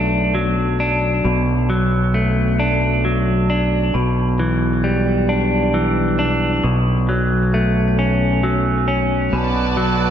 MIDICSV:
0, 0, Header, 1, 4, 480
1, 0, Start_track
1, 0, Key_signature, 2, "minor"
1, 0, Tempo, 898204
1, 671, Time_signature, 6, 3, 24, 8
1, 5399, End_track
2, 0, Start_track
2, 0, Title_t, "String section"
2, 0, Program_c, 0, 48
2, 4987, Note_on_c, 0, 66, 60
2, 4989, Note_on_c, 0, 81, 62
2, 4990, Note_on_c, 0, 71, 48
2, 4992, Note_on_c, 0, 74, 51
2, 5399, Note_off_c, 0, 66, 0
2, 5399, Note_off_c, 0, 71, 0
2, 5399, Note_off_c, 0, 74, 0
2, 5399, Note_off_c, 0, 81, 0
2, 5399, End_track
3, 0, Start_track
3, 0, Title_t, "Clean electric guitar"
3, 0, Program_c, 1, 27
3, 0, Note_on_c, 1, 47, 52
3, 0, Note_on_c, 1, 54, 48
3, 0, Note_on_c, 1, 57, 44
3, 0, Note_on_c, 1, 62, 50
3, 178, Note_off_c, 1, 54, 0
3, 185, Note_on_c, 1, 54, 54
3, 425, Note_off_c, 1, 62, 0
3, 428, Note_on_c, 1, 62, 49
3, 664, Note_off_c, 1, 47, 0
3, 666, Note_on_c, 1, 47, 55
3, 900, Note_off_c, 1, 54, 0
3, 907, Note_on_c, 1, 54, 57
3, 909, Note_off_c, 1, 57, 0
3, 1145, Note_on_c, 1, 57, 53
3, 1380, Note_off_c, 1, 62, 0
3, 1387, Note_on_c, 1, 62, 54
3, 1622, Note_off_c, 1, 54, 0
3, 1629, Note_on_c, 1, 54, 50
3, 1863, Note_off_c, 1, 62, 0
3, 1869, Note_off_c, 1, 47, 0
3, 1869, Note_on_c, 1, 62, 56
3, 2106, Note_on_c, 1, 47, 49
3, 2108, Note_off_c, 1, 57, 0
3, 2110, Note_off_c, 1, 54, 0
3, 2110, Note_off_c, 1, 62, 0
3, 2349, Note_on_c, 1, 52, 57
3, 2586, Note_on_c, 1, 55, 53
3, 2827, Note_on_c, 1, 62, 48
3, 3061, Note_off_c, 1, 52, 0
3, 3067, Note_on_c, 1, 52, 54
3, 3301, Note_off_c, 1, 62, 0
3, 3307, Note_on_c, 1, 62, 52
3, 3308, Note_off_c, 1, 47, 0
3, 3546, Note_on_c, 1, 47, 52
3, 3548, Note_off_c, 1, 55, 0
3, 3549, Note_off_c, 1, 52, 0
3, 3549, Note_off_c, 1, 62, 0
3, 3787, Note_on_c, 1, 54, 55
3, 4029, Note_on_c, 1, 57, 50
3, 4268, Note_on_c, 1, 61, 51
3, 4505, Note_off_c, 1, 54, 0
3, 4507, Note_on_c, 1, 54, 55
3, 4738, Note_off_c, 1, 61, 0
3, 4744, Note_on_c, 1, 61, 52
3, 4747, Note_off_c, 1, 47, 0
3, 4985, Note_on_c, 1, 47, 53
3, 4986, Note_off_c, 1, 61, 0
3, 5001, Note_off_c, 1, 57, 0
3, 5219, Note_off_c, 1, 54, 0
3, 5222, Note_on_c, 1, 54, 54
3, 5399, Note_off_c, 1, 47, 0
3, 5399, Note_off_c, 1, 54, 0
3, 5399, End_track
4, 0, Start_track
4, 0, Title_t, "Fingered electric bass"
4, 0, Program_c, 2, 33
4, 0, Note_on_c, 2, 35, 54
4, 648, Note_off_c, 2, 35, 0
4, 669, Note_on_c, 2, 35, 59
4, 2089, Note_off_c, 2, 35, 0
4, 2109, Note_on_c, 2, 35, 52
4, 3528, Note_off_c, 2, 35, 0
4, 3550, Note_on_c, 2, 35, 52
4, 4967, Note_off_c, 2, 35, 0
4, 4987, Note_on_c, 2, 35, 57
4, 5399, Note_off_c, 2, 35, 0
4, 5399, End_track
0, 0, End_of_file